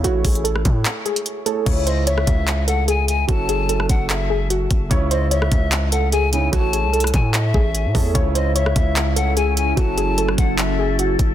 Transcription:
0.03 808-style bass A1, grand piano A3 E4 C#5, synth pluck F#4, closed hi-hat
0.25 808-style bass A1, synth pluck G#4, kick, closed hi-hat, open hi-hat
0.35 closed hi-hat
0.44 synth pluck A4, closed hi-hat
0.56 cross-stick
0.65 808-style bass A2, kick, closed hi-hat
0.85 clap, closed hi-hat
1.06 synth pluck G#4, closed hi-hat
1.16 closed hi-hat
1.26 closed hi-hat
1.46 grand piano A3 E4 G#4 C#5, synth pluck A4, closed hi-hat
1.65 808-style bass C#2, grand piano C#3 C#4 E4, synth pluck C#5, kick, closed hi-hat, crash
1.87 synth pluck C5, pan flute D#5, closed hi-hat
2.07 synth pluck C#5, pan flute E5, closed hi-hat
2.18 cross-stick
2.27 808-style bass C#2, kick, closed hi-hat
2.48 clap, closed hi-hat
2.68 synth pluck A4, pan flute F#5, closed hi-hat
2.88 synth pluck G#4, pan flute G#5, closed hi-hat
3.08 pan flute G#5, closed hi-hat
3.27 808-style bass F#1, grand piano F#3 C#4 E4 A4, synth pluck F#4, pan flute A5, kick, closed hi-hat
3.49 synth pluck G#4, closed hi-hat
3.69 synth pluck A4, closed hi-hat
3.80 cross-stick
3.89 808-style bass F#1, pan flute F#5, kick, closed hi-hat
4.10 pan flute E5, clap, closed hi-hat
4.30 synth pluck G#4
4.50 synth pluck F#4, closed hi-hat
4.71 808-style bass F#1, kick, closed hi-hat
4.89 808-style bass C#2, grand piano C#3 C#4 E4, synth pluck C#5, kick, closed hi-hat
5.11 synth pluck C5, pan flute D#5, closed hi-hat
5.31 synth pluck C#5, pan flute E5, closed hi-hat
5.42 cross-stick
5.52 808-style bass C#2, kick, closed hi-hat
5.72 clap, closed hi-hat
5.92 synth pluck A4, pan flute F#5, closed hi-hat
6.12 synth pluck G#4, pan flute G#5, closed hi-hat
6.32 grand piano C#3 C#4 D#4 E4, pan flute G#5, closed hi-hat
6.52 808-style bass A1, grand piano A3 E4 C#5, synth pluck F#4, pan flute A5, kick, closed hi-hat
6.73 synth pluck G#4, closed hi-hat
6.84 808-style bass C2
6.93 synth pluck A4, closed hi-hat
7.00 cross-stick, closed hi-hat
7.07 closed hi-hat
7.14 808-style bass A2, pan flute G#5, kick, closed hi-hat
7.34 pan flute E5, clap, closed hi-hat
7.54 808-style bass A1, synth pluck G#4, kick
7.75 closed hi-hat
7.85 808-style bass A2
7.94 808-style bass E2, grand piano A3 E4 G#4 C#5, synth pluck A4, kick, open hi-hat
8.14 808-style bass C#2, grand piano C#3 C#4 E4, ambient pad C#3 C#4 E4, synth pluck C#5, kick, closed hi-hat
8.35 synth pluck C5, pan flute D#5, closed hi-hat
8.56 synth pluck C#5, pan flute E5, closed hi-hat
8.66 cross-stick
8.76 808-style bass C#2, kick, closed hi-hat
8.96 clap, closed hi-hat
9.16 synth pluck A4, pan flute F#5, closed hi-hat
9.37 synth pluck G#4, pan flute G#5, closed hi-hat
9.57 pan flute G#5, closed hi-hat
9.76 808-style bass F#1, grand piano F#3 C#4 E4 A4, ambient pad F#3 E4 A4, synth pluck F#4, pan flute A5, kick, closed hi-hat
9.98 synth pluck G#4, closed hi-hat
10.18 synth pluck A4, closed hi-hat
10.29 cross-stick
10.38 808-style bass F#1, pan flute F#5, kick, closed hi-hat
10.58 pan flute E5, clap, closed hi-hat
10.79 synth pluck G#4
10.99 synth pluck F#4, closed hi-hat
11.19 808-style bass F#1, kick, closed hi-hat

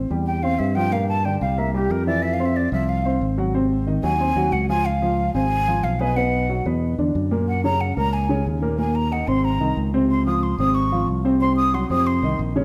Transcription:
0.10 fingered electric bass E2, grand piano G3 G4 G5
0.26 flute G5
0.43 grand piano C4 C5 C6, flute F5
0.59 fingered electric bass G2, flute E5
0.75 grand piano F3 F4 F5, flute G5
0.92 grand piano A#2 A#3 A#4, flute F5
1.08 flute A5
1.25 grand piano D3 D4 D5, flute G5
1.41 fingered electric bass C2, grand piano G3 G4 G5, flute F5
1.58 grand piano A#3 A#4 A#5, flute E5
1.74 grand piano G3 G4 G5, flute G4
1.90 fingered electric bass F2, flute A#4
2.07 grand piano E3 E4 E5, flute D5
2.22 flute E5
2.33 flute F5
2.40 grand piano C4 C5 C6
2.45 flute E5
2.56 flute D5
2.72 fingered electric bass C2, grand piano F3 F4 F5, flute E5
2.89 flute F5
3.05 grand piano C4 C5 C6
3.21 fingered electric bass G#1
3.38 grand piano F#3 F#4 F#5
3.54 grand piano C3 C4 C5
3.87 grand piano D#3 D#4 D#5
4.03 fingered electric bass D#2, grand piano F#3 F#4 F#5, flute G#5
4.20 grand piano C4 C5 C6
4.36 fingered electric bass D#2, grand piano F#3 F#4 F#5
4.52 fingered electric bass C#2, flute F#5
4.69 grand piano F3 F4 F5, flute G#5
4.85 flute F5
5.02 grand piano F3 F4 F5
5.34 fingered electric bass G#1, grand piano C3 C4 C5, flute G#5
5.68 grand piano F3 F4 F5
5.83 fingered electric bass B1, flute F5
6.00 grand piano B2 B3 B4, flute G#5
6.16 grand piano B2 B3 B4, flute F#5
6.49 grand piano F#3 F#4 F#5
6.66 fingered electric bass E2, grand piano B2 B3 B4
6.98 fingered electric bass E2, grand piano D3 D4 D5
7.15 fingered electric bass F#2
7.31 grand piano A#2 A#3 A#4
7.48 flute F#5
7.64 grand piano C#3 C#4 C#5, flute A#5
7.81 flute F#5
7.97 fingered electric bass C#2, grand piano A#2 A#3 A#4, flute A#5
8.13 flute G#5
8.29 grand piano C#3 C#4 C#5
8.46 fingered electric bass D#2
8.62 grand piano A#2 A#3 A#4
8.78 grand piano A#2 A#3 A#4, flute G#5
8.95 flute A#5
9.11 grand piano D#3 D#4 D#5, flute F#5
9.28 fingered electric bass G#1, grand piano C3 C4 C5, flute C6
9.44 flute A#5
9.60 fingered electric bass C2, grand piano D#3 D#4 D#5
9.77 fingered electric bass C#2
9.94 grand piano C3 C4 C5
10.11 flute C6
10.26 grand piano F3 F4 F5, flute D#6
10.43 flute C6
10.58 fingered electric bass G#1, grand piano C3 C4 C5, flute D#6
10.74 flute C#6
10.92 grand piano F3 F4 F5
11.08 fingered electric bass C2
11.25 grand piano C3 C4 C5
11.41 grand piano C3 C4 C5, flute C6
11.56 flute D#6
11.74 grand piano F#3 F#4 F#5, flute C6
11.90 fingered electric bass F2, grand piano C3 C4 C5, flute D#6
12.07 flute C6
12.22 fingered electric bass C2, grand piano D#3 D#4 D#5
12.39 fingered electric bass A#1
12.56 grand piano C#3 C#4 C#5

